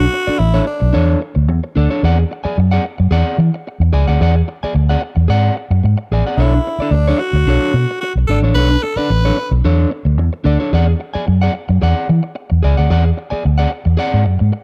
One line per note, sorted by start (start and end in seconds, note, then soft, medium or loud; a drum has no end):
0.00 0.40 F#4 loud
0.00 muted clean electric guitar stroke soft
0.13 muted clean electric guitar stroke soft
0.27 0.38 D4 medium
0.27 0.39 A4 medium
0.27 0.40 D5 medium
0.27 muted fingered electric bass stroke soft
0.39 0.60 A1 loud
0.39 0.66 E4 loud
0.39 muted clean electric guitar stroke soft
0.54 0.65 D4 medium
0.54 0.66 A4 medium
0.54 0.66 C#5 medium
0.66 1.17 D4 medium
0.66 muted clean electric guitar stroke soft
0.80 0.91 B1 medium
0.80 muted clean electric guitar stroke soft
0.93 1.15 E2 medium
0.93 1.18 D4 medium
0.93 1.19 A4 medium
0.93 1.19 C#5 loud
1.21 muted clean electric guitar stroke soft
1.35 1.48 D2 loud
1.35 muted clean electric guitar stroke soft
1.48 1.59 E2 loud
1.48 muted clean electric guitar stroke soft
1.64 muted clean electric guitar stroke medium
1.75 1.87 D2 medium
1.75 1.90 D4 medium
1.75 1.90 A4 medium
1.75 1.90 D5 medium
1.90 2.05 D4 medium
1.90 2.03 A4 medium
1.90 2.04 C#5 medium
2.03 2.23 E2 loud
2.03 2.23 G#4 medium
2.03 2.19 D5 medium
2.03 2.18 F#5 medium
2.19 muted clean electric guitar stroke medium
2.31 muted clean electric guitar stroke soft
2.44 2.57 G#4 medium
2.44 2.59 D5 medium
2.44 2.58 G#5 medium
2.44 muted fingered electric bass stroke soft
2.58 2.78 F#2 medium
2.58 muted clean electric guitar stroke soft
2.71 2.84 G#4 medium
2.71 2.84 D5 medium
2.71 2.85 F#5 medium
2.85 muted clean electric guitar stroke soft
2.98 3.09 F#2 medium
2.98 muted clean electric guitar stroke soft
3.11 3.22 E2 medium
3.11 3.36 G#4 medium
3.11 3.37 D5 loud
3.11 3.37 F#5 loud
3.38 3.49 E3 loud
3.38 muted clean electric guitar stroke soft
3.54 muted clean electric guitar stroke soft
3.67 muted clean electric guitar stroke soft
3.80 3.89 E2 loud
3.80 muted clean electric guitar stroke soft
3.93 4.04 C#2 medium
3.93 4.08 G#4 medium
3.93 4.08 D5 medium
3.93 4.07 G#5 medium
4.07 4.17 D2 medium
4.07 4.20 G#4 medium
4.07 4.20 D5 medium
4.07 4.21 F#5 medium
4.21 4.41 E2 loud
4.21 4.40 G#4 medium
4.21 4.36 D5 medium
4.21 4.35 F#5 loud
4.36 muted clean electric guitar stroke soft
4.48 muted clean electric guitar stroke soft
4.63 4.74 G#4 medium
4.63 4.74 D5 medium
4.63 4.76 G#5 medium
4.63 muted fingered electric bass stroke soft
4.75 4.95 D2 medium
4.75 muted clean electric guitar stroke soft
4.89 5.01 G#4 medium
4.89 5.01 D5 medium
4.89 5.02 F#5 medium
5.02 muted clean electric guitar stroke soft
5.16 5.26 E2 medium
5.16 muted clean electric guitar stroke soft
5.28 5.49 G#2 medium
5.28 5.54 G#4 medium
5.28 5.55 D5 loud
5.28 5.55 F#5 loud
5.56 muted clean electric guitar stroke soft
5.70 5.80 F#2 medium
5.70 muted clean electric guitar stroke medium
5.84 5.95 G#2 loud
5.84 muted clean electric guitar stroke soft
5.98 muted clean electric guitar stroke medium
6.11 6.22 A1 medium
6.11 6.27 G#4 medium
6.11 6.26 D5 medium
6.11 6.26 G#5 medium
6.26 6.39 G#4 medium
6.26 6.40 D5 medium
6.26 6.40 F#5 medium
6.37 6.58 B1 loud
6.37 6.58 D4 medium
6.37 6.93 E4 medium
6.37 6.54 A4 medium
6.37 6.53 C#5 medium
6.54 muted clean electric guitar stroke medium
6.67 muted clean electric guitar stroke soft
6.79 6.93 D4 medium
6.79 6.93 A4 medium
6.79 6.94 D5 medium
6.79 muted fingered electric bass stroke soft
6.91 7.12 D2 medium
6.91 7.20 D4 loud
6.91 muted clean electric guitar stroke soft
7.08 7.19 D4 medium
7.08 7.20 A4 medium
7.08 7.21 C#5 medium
7.19 8.00 F#4 loud
7.19 muted clean electric guitar stroke soft
7.33 7.43 D2 medium
7.33 muted clean electric guitar stroke soft
7.46 7.57 B1 medium
7.46 7.72 D4 medium
7.46 7.73 A4 medium
7.46 7.73 C#5 medium
7.74 7.84 B2 medium
7.74 muted clean electric guitar stroke soft
7.91 muted clean electric guitar stroke soft
8.01 8.13 F#4 medium
8.01 muted clean electric guitar stroke soft
8.15 8.25 B1 medium
8.15 muted clean electric guitar stroke soft
8.27 8.39 G#1 medium
8.27 8.44 D4 medium
8.27 8.40 A4 loud
8.27 8.43 A4 medium
8.27 8.43 D5 medium
8.42 8.52 A1 medium
8.42 8.55 D4 medium
8.42 8.56 A4 medium
8.42 8.57 C#5 medium
8.54 8.75 B1 loud
8.54 8.75 D4 medium
8.54 8.71 A4 medium
8.54 8.84 B4 loud
8.54 8.69 C#5 medium
8.70 muted clean electric guitar stroke medium
8.82 8.98 A4 loud
8.82 muted clean electric guitar stroke medium
8.96 9.10 D4 medium
8.96 9.10 A4 medium
8.96 9.51 B4 loud
8.96 9.11 D5 medium
8.96 muted fingered electric bass stroke soft
9.10 9.30 A1 loud
9.10 muted clean electric guitar stroke medium
9.25 9.37 D4 medium
9.25 9.37 A4 medium
9.25 9.38 C#5 loud
9.38 muted clean electric guitar stroke soft
9.51 9.61 B1 medium
9.51 muted clean electric guitar stroke soft
9.64 9.84 E2 medium
9.64 9.89 D4 medium
9.64 9.90 A4 loud
9.64 9.90 C#5 loud
9.91 muted clean electric guitar stroke soft
10.05 10.18 D2 medium
10.05 muted clean electric guitar stroke soft
10.18 10.29 E2 loud
10.18 muted clean electric guitar stroke soft
10.33 muted clean electric guitar stroke medium
10.44 10.56 D2 medium
10.44 10.60 D4 medium
10.44 10.60 A4 medium
10.44 10.59 D5 medium
10.60 10.75 D4 soft
10.60 10.72 A4 medium
10.60 10.73 C#5 medium
10.73 10.93 E2 loud
10.73 10.92 G#4 medium
10.73 10.87 D5 loud
10.73 10.86 F#5 medium
10.88 muted clean electric guitar stroke medium
11.00 muted clean electric guitar stroke soft
11.14 11.26 G#4 medium
11.14 11.25 D5 medium
11.14 11.27 G#5 medium
11.14 muted fingered electric bass stroke soft
11.27 11.48 F#2 loud
11.27 muted clean electric guitar stroke soft
11.42 11.52 G#4 medium
11.42 11.53 D5 medium
11.42 11.54 F#5 medium
11.53 muted clean electric guitar stroke medium
11.69 11.78 F#2 medium
11.69 muted clean electric guitar stroke medium
11.82 11.92 E2 medium
11.82 12.06 G#4 medium
11.82 12.07 D5 medium
11.82 12.07 F#5 medium
12.09 12.20 E3 loud
12.09 muted clean electric guitar stroke medium
12.23 muted clean electric guitar stroke soft
12.35 muted clean electric guitar stroke soft
12.50 12.60 E2 medium
12.50 muted clean electric guitar stroke soft
12.63 12.74 C#2 medium
12.63 12.78 G#4 medium
12.63 12.77 D5 medium
12.63 12.77 G#5 medium
12.77 12.87 D2 medium
12.77 12.89 G#4 soft
12.77 12.90 D5 medium
12.77 12.91 F#5 medium
12.90 13.10 E2 loud
12.90 13.10 G#4 medium
12.90 13.05 D5 medium
12.90 13.04 F#5 loud
13.05 muted clean electric guitar stroke medium
13.17 muted clean electric guitar stroke soft
13.30 13.44 G#4 medium
13.30 13.45 D5 medium
13.30 13.45 G#5 medium
13.30 muted fingered electric bass stroke soft
13.45 13.65 D2 loud
13.45 muted clean electric guitar stroke soft
13.58 13.70 G#4 medium
13.58 13.71 D5 medium
13.58 13.71 F#5 medium
13.71 muted clean electric guitar stroke soft
13.85 13.95 E2 medium
13.85 muted clean electric guitar stroke soft
13.97 14.23 G#4 loud
13.97 14.23 D5 loud
13.97 14.24 F#5 loud
14.14 14.26 G#2 medium
14.25 14.37 F#2 medium
14.25 muted clean electric guitar stroke soft
14.39 14.50 G#2 loud
14.39 muted clean electric guitar stroke soft
14.52 muted clean electric guitar stroke soft